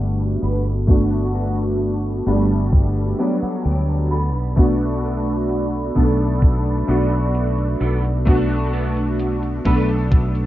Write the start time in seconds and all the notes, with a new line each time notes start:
Already playing: G1 G3 A3 B3 D4 F#4 A4 A5 B5
0.19 closed hi-hat
0.42 G1 B3 F#4 B4, closed hi-hat
0.65 closed hi-hat
0.87 A3 B3 D4 F#4, kick, closed hi-hat
1.11 closed hi-hat
1.34 B3 F#4 A4, closed hi-hat
1.57 closed hi-hat
1.80 closed hi-hat
2.04 closed hi-hat
2.26 G1 G3 A3 B3 D4 F#4 B4, closed hi-hat
2.50 closed hi-hat
2.72 kick, closed hi-hat
2.96 closed hi-hat
3.18 F#3 A3 B3 D4 F#4 B4 D5, closed hi-hat
3.42 F#5, muted fretless electric bass stroke, closed hi-hat
3.65 D2 G5, closed hi-hat
3.89 closed hi-hat
4.10 B3 D4 A4 D5 B5, closed hi-hat
4.35 B1, closed hi-hat
4.56 A3 B3 D4 F#4, kick, closed hi-hat
4.81 closed hi-hat
5.04 B3 D4 A4, closed hi-hat
5.27 closed hi-hat
5.50 closed hi-hat
5.73 closed hi-hat
5.95 B1 A3 B3 D4 A4, kick, closed hi-hat
6.20 closed hi-hat
6.42 kick, closed hi-hat
6.66 closed hi-hat
6.87 B1 A3 B3 D4 F#4 A4, closed hi-hat
7.12 closed hi-hat
7.35 closed hi-hat
7.58 closed hi-hat
7.80 B1 B3 D4 A4, closed hi-hat
8.04 closed hi-hat
8.25 A3 B3 D4 F#4, kick, closed hi-hat
8.51 closed hi-hat
8.73 B3 D4 A4, closed hi-hat
8.97 closed hi-hat
9.19 closed hi-hat
9.43 closed hi-hat
9.65 B1 A3 B3 D4 A4 B4, kick, closed hi-hat
9.89 closed hi-hat
10.12 kick, closed hi-hat
10.35 closed hi-hat